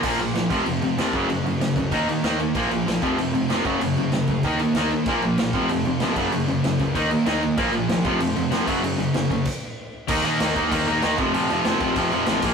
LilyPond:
<<
  \new Staff \with { instrumentName = "Distorted electric guitar" } { \clef bass \time 4/4 \key f \mixolydian \tempo 4 = 191 <bes, f bes>4. <f, c f>2 <ges, des ges>8~ | <ges, des ges>2 <ees bes ees'>2 | <bes, f bes>4. <f, c f>2 <ges, des ges>8~ | <ges, des ges>2 <ees bes ees'>2 |
<bes, f bes>4. <f, c f>2 <ges, des ges>8~ | <ges, des ges>2 <ees bes ees'>2 | <bes, f bes>4. <f, c f>2 <ges, des ges>8~ | <ges, des ges>2 r2 |
<ees bes ees'>8 <ees bes ees'>8 <ees bes ees'>8 <ees bes ees'>8 <ees bes ees'>8 <ees bes ees'>8 <ees bes ees'>8 <f, c f>8 | <f, c f>8 <f, c f>8 <f, c f>8 <f, c f>8 <f, c f>8 <f, c f>8 <f, c f>8 <bes, f bes>8 | }
  \new Staff \with { instrumentName = "Distorted electric guitar" } { \clef bass \time 4/4 \key f \mixolydian <bes, f bes>8 <bes, f>8 <bes, f>8 <f, c f>8 <f, c>8 <f, c>8 <f, c f>8 <ges, des ges>8 | <ges, des>8 <ges, des>8 <ges, des>8 <ges, des>8 <ees bes ees'>8 <ees bes>8 <ees bes ees'>8 <ees bes>8 | <bes, f bes>8 <bes, f>8 <bes, f>8 <f, c f>8 <f, c>8 <f, c>8 <f, c f>8 <ges, des ges>8 | <ges, des>8 <ges, des>8 <ges, des>8 <ges, des>8 <ees bes ees'>8 <ees bes>8 <ees bes ees'>8 <ees bes>8 |
<bes, f bes>8 <bes, f>8 <bes, f>8 <f, c f>8 <f, c>8 <f, c>8 <f, c f>8 <ges, des ges>8 | <ges, des>8 <ges, des>8 <ges, des>8 <ges, des>8 <ees bes ees'>8 <ees bes>8 <ees bes ees'>8 <ees bes>8 | <bes, f bes>8 <bes, f>8 <bes, f>8 <f, c f>8 <f, c>8 <f, c>8 <f, c f>8 <ges, des ges>8 | <ges, des>8 <ges, des>8 <ges, des>8 <ges, des>8 r2 |
<ees bes ees'>8 <ees bes ees'>8 <ees bes ees'>8 <ees bes ees'>8 <ees bes ees'>8 <ees bes ees'>8 <ees bes ees'>8 <f, c f>8 | <f, c f>8 <f, c f>8 <f, c f>8 <f, c f>8 <f, c f>8 <f, c f>8 <f, c f>8 <bes, f bes>8 | }
  \new Staff \with { instrumentName = "Overdriven electric guitar" } { \clef bass \time 4/4 \key f \mixolydian <bes, f bes>8 <bes, f>8 <bes, f>8 <f, c f>8 <f, c>8 <f, c>8 <f, c f>8 <ges, des ges>8 | <ges, des>8 <ges, des>8 <ges, des>8 <ges, des>8 <ees bes ees'>8 <ees bes>8 <ees bes ees'>8 <ees bes>8 | <bes, f bes>8 <bes, f>8 <bes, f>8 <f, c f>8 <f, c>8 <f, c>8 <f, c f>8 <ges, des ges>8 | <ges, des>8 <ges, des>8 <ges, des>8 <ges, des>8 <ees bes ees'>8 <ees bes>8 <ees bes ees'>8 <ees bes>8 |
<bes, f bes>8 <bes, f>8 <bes, f>8 <f, c f>8 <f, c>8 <f, c>8 <f, c f>8 <ges, des ges>8 | <ges, des>8 <ges, des>8 <ges, des>8 <ges, des>8 <ees bes ees'>8 <ees bes>8 <ees bes ees'>8 <ees bes>8 | <bes, f bes>8 <bes, f>8 <bes, f>8 <f, c f>8 <f, c>8 <f, c>8 <f, c f>8 <ges, des ges>8 | <ges, des>8 <ges, des>8 <ges, des>8 <ges, des>8 r2 |
<ees bes ees'>8 <ees bes ees'>8 <ees bes ees'>8 <ees bes ees'>8 <ees bes ees'>8 <ees bes ees'>8 <ees bes ees'>8 <f, c f>8 | <f, c f>8 <f, c f>8 <f, c f>8 <f, c f>8 <f, c f>8 <f, c f>8 <f, c f>8 <bes, f bes>8 | }
  \new Staff \with { instrumentName = "Picked electric bass" } { \clef bass \time 4/4 \key f \mixolydian bes,,8 bes,,8 bes,,8 f,,8 f,,4 f,,8 ges,,8 | ges,,8 ges,,8 ges,,8 des,8 ees,4 ees,4 | bes,,8 bes,,8 bes,,8 f,,8 f,,4 f,,8 ges,,8 | ges,,8 ges,,8 ges,,8 d,8 ees,4 ees,4 |
bes,,8 bes,,8 bes,,8 f,,8 f,,4 g,,8 ges,,8 | ges,,8 ges,,8 ges,,8 des,8 ees,4 ees,4 | bes,,8 bes,,8 ees,8 f,,8 f,,4 f,,8 ges,,8 | ges,,8 ges,,8 ges,,8 ges,,8 r2 |
ees,8 ees8 ees,8 ees,8 ees,8 ees,8 ees,8 f,,8 | f,,8 f,,8 f,,8 bes,,8 f,,8 f,,8 a,,8 bes,,8 | }
  \new DrumStaff \with { instrumentName = "Drums" } \drummode { \time 4/4 <cymc bd>8 cymc8 <cymc sn>8 <cymc bd>8 cymc8 cymc8 <cymc sn>8 <cymc bd>8 | cymc8 cymc8 <cymc sn>8 <cymc bd>8 <cymc bd>8 cymc8 <cymc sn>8 cymc8 | <cymc bd>8 cymc8 <cymc sn>8 <cymc bd>8 cymc8 cymc8 <cymc sn>8 <cymc bd>8 | cymc8 cymc8 <cymc sn>8 <cymc bd>8 <cymc bd>8 cymc8 <cymc sn>8 cymc8 |
<cymc bd>8 cymc8 <cymc sn>8 <cymc bd>8 cymc8 cymc8 <cymc sn>8 <cymc bd>8 | cymc8 cymc8 <cymc sn>8 <cymc bd>8 <cymc bd>8 cymc8 <cymc sn>8 cymc8 | <cymc bd>8 cymc8 <cymc sn>8 <cymc bd>8 cymc8 cymc8 <cymc sn>8 <cymc bd>8 | cymc8 cymc8 <cymc sn>8 <cymc bd>8 <cymc bd>4 r4 |
<cymc bd>8 cymc8 <cymc sn>8 <cymc bd>8 <cymc bd>8 cymc8 <cymc sn>8 <cymc bd>8 | cymc8 cymc8 <cymc sn>8 <cymc bd>8 <cymc bd>8 cymc8 <cymc sn>8 <cymc bd>8 | }
>>